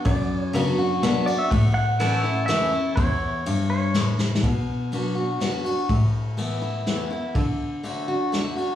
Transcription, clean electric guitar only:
0, 0, Header, 1, 2, 480
1, 0, Start_track
1, 0, Key_signature, 2, "minor"
1, 0, Tempo, 486618
1, 59, Time_signature, 3, 2, 24, 8
1, 8632, End_track
2, 0, Start_track
2, 0, Title_t, "Clean electric guitar"
2, 0, Program_c, 0, 27
2, 54, Note_on_c, 0, 74, 80
2, 389, Note_off_c, 0, 74, 0
2, 389, Note_on_c, 0, 73, 80
2, 502, Note_off_c, 0, 73, 0
2, 1245, Note_on_c, 0, 74, 100
2, 1362, Note_off_c, 0, 74, 0
2, 1365, Note_on_c, 0, 76, 97
2, 1483, Note_off_c, 0, 76, 0
2, 1483, Note_on_c, 0, 78, 116
2, 1706, Note_off_c, 0, 78, 0
2, 1718, Note_on_c, 0, 78, 115
2, 2406, Note_off_c, 0, 78, 0
2, 2426, Note_on_c, 0, 76, 89
2, 2912, Note_off_c, 0, 76, 0
2, 2916, Note_on_c, 0, 73, 89
2, 3604, Note_off_c, 0, 73, 0
2, 3648, Note_on_c, 0, 73, 71
2, 4096, Note_off_c, 0, 73, 0
2, 8632, End_track
0, 0, End_of_file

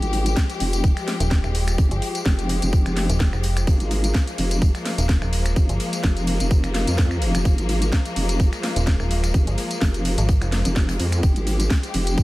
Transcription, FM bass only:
0, 0, Header, 1, 2, 480
1, 0, Start_track
1, 0, Key_signature, -4, "minor"
1, 0, Tempo, 472441
1, 1813, Time_signature, 4, 2, 24, 8
1, 12426, End_track
2, 0, Start_track
2, 0, Title_t, "FM bass"
2, 0, Program_c, 0, 39
2, 1222, Note_on_c, 0, 27, 98
2, 1442, Note_off_c, 0, 27, 0
2, 1463, Note_on_c, 0, 27, 98
2, 1795, Note_off_c, 0, 27, 0
2, 1942, Note_on_c, 0, 31, 103
2, 2035, Note_off_c, 0, 31, 0
2, 3143, Note_on_c, 0, 27, 96
2, 3362, Note_off_c, 0, 27, 0
2, 3382, Note_on_c, 0, 29, 98
2, 3714, Note_off_c, 0, 29, 0
2, 5062, Note_on_c, 0, 27, 99
2, 5282, Note_off_c, 0, 27, 0
2, 5303, Note_on_c, 0, 27, 98
2, 5635, Note_off_c, 0, 27, 0
2, 5784, Note_on_c, 0, 31, 103
2, 5875, Note_off_c, 0, 31, 0
2, 8903, Note_on_c, 0, 27, 95
2, 9122, Note_off_c, 0, 27, 0
2, 9143, Note_on_c, 0, 27, 98
2, 9475, Note_off_c, 0, 27, 0
2, 9624, Note_on_c, 0, 31, 99
2, 9715, Note_off_c, 0, 31, 0
2, 10344, Note_on_c, 0, 32, 99
2, 10563, Note_off_c, 0, 32, 0
2, 10582, Note_on_c, 0, 29, 98
2, 10802, Note_off_c, 0, 29, 0
2, 12426, End_track
0, 0, End_of_file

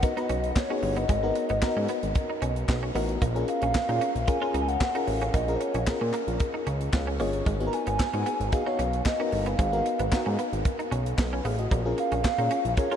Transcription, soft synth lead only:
0, 0, Header, 1, 2, 480
1, 0, Start_track
1, 0, Tempo, 530973
1, 989, Time_signature, 4, 2, 24, 8
1, 11719, End_track
2, 0, Start_track
2, 0, Title_t, "Soft synth lead"
2, 0, Program_c, 0, 80
2, 30, Note_on_c, 0, 75, 100
2, 512, Note_on_c, 0, 73, 97
2, 526, Note_off_c, 0, 75, 0
2, 874, Note_on_c, 0, 75, 95
2, 888, Note_off_c, 0, 73, 0
2, 2315, Note_off_c, 0, 75, 0
2, 3151, Note_on_c, 0, 77, 111
2, 3868, Note_on_c, 0, 80, 116
2, 3882, Note_off_c, 0, 77, 0
2, 4169, Note_off_c, 0, 80, 0
2, 4173, Note_on_c, 0, 80, 78
2, 4233, Note_on_c, 0, 78, 92
2, 4247, Note_off_c, 0, 80, 0
2, 4585, Note_on_c, 0, 77, 101
2, 4599, Note_off_c, 0, 78, 0
2, 4827, Note_on_c, 0, 75, 108
2, 4840, Note_off_c, 0, 77, 0
2, 5020, Note_on_c, 0, 72, 64
2, 5034, Note_off_c, 0, 75, 0
2, 5065, Note_on_c, 0, 73, 87
2, 5078, Note_off_c, 0, 72, 0
2, 5307, Note_on_c, 0, 70, 90
2, 5320, Note_off_c, 0, 73, 0
2, 6508, Note_off_c, 0, 70, 0
2, 6929, Note_on_c, 0, 82, 87
2, 6996, Note_on_c, 0, 80, 113
2, 7009, Note_off_c, 0, 82, 0
2, 7706, Note_off_c, 0, 80, 0
2, 7711, Note_on_c, 0, 77, 102
2, 8156, Note_off_c, 0, 77, 0
2, 8189, Note_on_c, 0, 75, 88
2, 8560, Note_on_c, 0, 77, 104
2, 8573, Note_off_c, 0, 75, 0
2, 9998, Note_off_c, 0, 77, 0
2, 10841, Note_on_c, 0, 77, 125
2, 11519, Note_off_c, 0, 77, 0
2, 11553, Note_on_c, 0, 73, 100
2, 11719, Note_off_c, 0, 73, 0
2, 11719, End_track
0, 0, End_of_file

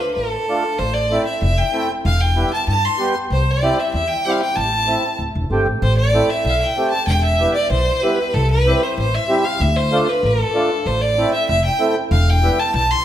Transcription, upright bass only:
0, 0, Header, 1, 2, 480
1, 0, Start_track
1, 0, Key_signature, 0, "minor"
1, 0, Tempo, 628931
1, 598, Time_signature, 2, 2, 24, 8
1, 9958, End_track
2, 0, Start_track
2, 0, Title_t, "Upright bass"
2, 0, Program_c, 0, 32
2, 125, Note_on_c, 0, 33, 67
2, 267, Note_off_c, 0, 33, 0
2, 601, Note_on_c, 0, 33, 86
2, 889, Note_off_c, 0, 33, 0
2, 1082, Note_on_c, 0, 29, 80
2, 1225, Note_off_c, 0, 29, 0
2, 1564, Note_on_c, 0, 28, 96
2, 1851, Note_off_c, 0, 28, 0
2, 2040, Note_on_c, 0, 43, 76
2, 2185, Note_off_c, 0, 43, 0
2, 2521, Note_on_c, 0, 36, 86
2, 2810, Note_off_c, 0, 36, 0
2, 3005, Note_on_c, 0, 40, 82
2, 3149, Note_off_c, 0, 40, 0
2, 3485, Note_on_c, 0, 33, 83
2, 3773, Note_off_c, 0, 33, 0
2, 3959, Note_on_c, 0, 26, 70
2, 4070, Note_off_c, 0, 26, 0
2, 4086, Note_on_c, 0, 28, 67
2, 4193, Note_off_c, 0, 28, 0
2, 4200, Note_on_c, 0, 31, 60
2, 4310, Note_off_c, 0, 31, 0
2, 4319, Note_on_c, 0, 33, 65
2, 4430, Note_off_c, 0, 33, 0
2, 4442, Note_on_c, 0, 33, 96
2, 4732, Note_off_c, 0, 33, 0
2, 4918, Note_on_c, 0, 35, 86
2, 5065, Note_off_c, 0, 35, 0
2, 5395, Note_on_c, 0, 28, 86
2, 5687, Note_off_c, 0, 28, 0
2, 5877, Note_on_c, 0, 35, 85
2, 6024, Note_off_c, 0, 35, 0
2, 6365, Note_on_c, 0, 36, 96
2, 6653, Note_off_c, 0, 36, 0
2, 6852, Note_on_c, 0, 33, 84
2, 6994, Note_off_c, 0, 33, 0
2, 7327, Note_on_c, 0, 38, 99
2, 7614, Note_off_c, 0, 38, 0
2, 7807, Note_on_c, 0, 33, 82
2, 7950, Note_off_c, 0, 33, 0
2, 8286, Note_on_c, 0, 33, 83
2, 8573, Note_off_c, 0, 33, 0
2, 8769, Note_on_c, 0, 29, 86
2, 8911, Note_off_c, 0, 29, 0
2, 9242, Note_on_c, 0, 28, 99
2, 9529, Note_off_c, 0, 28, 0
2, 9723, Note_on_c, 0, 35, 92
2, 9865, Note_off_c, 0, 35, 0
2, 9958, End_track
0, 0, End_of_file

